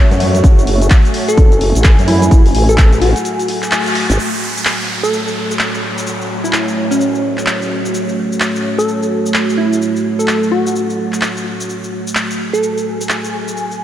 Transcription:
Already playing: A3 F#4 C#5
0.11 F#2, closed hi-hat, cabasa
0.20 open hi-hat
0.35 closed hi-hat, cabasa
0.44 F#1 G#5, kick, closed hi-hat, cabasa
0.59 cabasa
0.67 F#1, open hi-hat
0.82 closed hi-hat, cabasa
0.90 kick, clap, closed hi-hat, cabasa
1.05 closed hi-hat, cabasa
1.14 open hi-hat
1.28 A4, closed hi-hat, cabasa
1.37 F#1, kick, closed hi-hat, cabasa
1.52 closed hi-hat, cabasa
1.61 open hi-hat
1.75 A1, closed hi-hat, cabasa
1.84 kick, clap, closed hi-hat, cabasa
1.99 F#2, closed hi-hat, cabasa
2.08 E4, open hi-hat
2.22 closed hi-hat, cabasa
2.31 F#1, kick, closed hi-hat, cabasa
2.46 open hi-hat, cabasa
2.55 A1, open hi-hat
2.69 A4, closed hi-hat, cabasa
2.78 A4, kick, clap, closed hi-hat, cabasa
2.93 closed hi-hat, cabasa
3.01 A1 F#4, open hi-hat
3.16 closed hi-hat, cabasa
3.25 closed hi-hat, cabasa
3.39 closed hi-hat, cabasa
3.48 open hi-hat
3.62 clap, closed hi-hat, cabasa
3.71 clap, closed hi-hat, cabasa
3.86 closed hi-hat, cabasa
3.95 open hi-hat
4.10 G#1, closed hi-hat, cabasa
4.19 A3 F#4 C#5, downlifter, cabasa
4.34 cabasa
4.57 cabasa
4.65 clap, cabasa
4.81 cabasa
5.03 A4, cabasa
5.13 cabasa
5.28 cabasa
5.51 cabasa
5.59 clap, cabasa
5.75 cabasa
5.98 cabasa
6.07 cabasa
6.21 cabasa
6.44 E4, cabasa
6.53 clap, cabasa
6.68 cabasa
6.91 C#4, cabasa
7.01 cabasa
7.15 cabasa
7.37 clap, cabasa
7.46 clap, cabasa
7.62 cabasa
7.85 cabasa
7.94 cabasa
8.09 cabasa
8.32 cabasa
8.40 clap, cabasa
8.56 cabasa
8.78 A4, cabasa
8.88 cabasa
9.03 cabasa
9.26 cabasa
9.34 clap, cabasa
9.50 cabasa
9.58 E4
9.73 cabasa
9.82 cabasa
9.96 cabasa
10.19 A4, cabasa
10.28 A4, clap, cabasa
10.43 cabasa
10.52 F#4
10.67 cabasa
10.76 cabasa
10.90 cabasa
11.12 clap, cabasa
11.21 clap, cabasa
11.37 cabasa
11.60 cabasa
11.69 G#5, cabasa
11.84 cabasa
12.07 cabasa
12.15 clap, cabasa
12.31 cabasa
12.53 A4, cabasa
12.63 cabasa
12.78 cabasa
13.01 cabasa
13.09 clap, cabasa
13.25 cabasa
13.48 cabasa
13.57 cabasa
13.71 cabasa

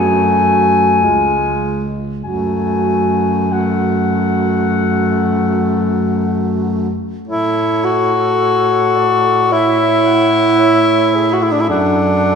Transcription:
Already playing: F#2 A3 F#4 G#5
1.03 C#2 G#3 F4
2.24 F#2 A3 F#4 G#5
3.52 A3 F#4 F#5
7.27 A2 E4 A4 C#5
7.84 F#4
8.41 C#5
8.96 D5
9.52 E4 C#5 E5
10.05 F#5
10.59 C#5 E5
11.15 G#4
11.33 F#4
11.42 E4
11.52 D4
11.61 E4
11.69 F#2 D4 A4 F#5
12.24 A4

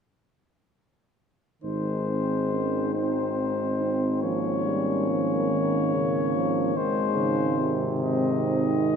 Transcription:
1.62 G#1 D#3 G#3 D#4 C5
2.09 C4
2.51 C#4
2.94 C4 D#4 C5
3.38 D#4
3.81 C4
4.22 F3 A#3 C#4 C#5
4.66 G3
5.09 F3
5.52 D#3
5.94 C#3
6.35 F3
6.76 G#1 D#3 G#3 D#4 C5
7.17 C#3
7.59 C3
8.00 C4 D#4 D#5

